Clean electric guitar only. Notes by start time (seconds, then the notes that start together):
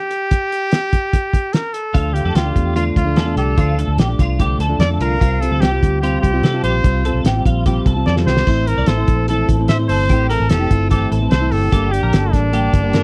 1.94 F4
2.25 A4
2.36 G4
2.76 F4
3.17 A4
3.37 G4
3.58 F4
3.79 A4
3.99 G4
4.20 F4
4.40 G4
4.60 A4
4.81 A4
5.01 F4
5.21 F4
5.52 A4
5.63 G4
6.03 F4
6.44 A4
6.64 G4
6.85 F4
7.05 A4
7.26 G4
7.46 F4
7.66 G4
7.87 A4
8.07 A4
8.27 G4
8.47 C5
8.78 D5
8.88 C5
9.29 A4
9.69 C5
9.90 A4
10.10 G4
10.30 A4
10.51 G4
10.71 F4
10.91 G4
11.12 A4
11.32 A4
11.52 G4
11.72 G4
12.03 A#4
12.13 A4
12.54 G4
12.94 A#4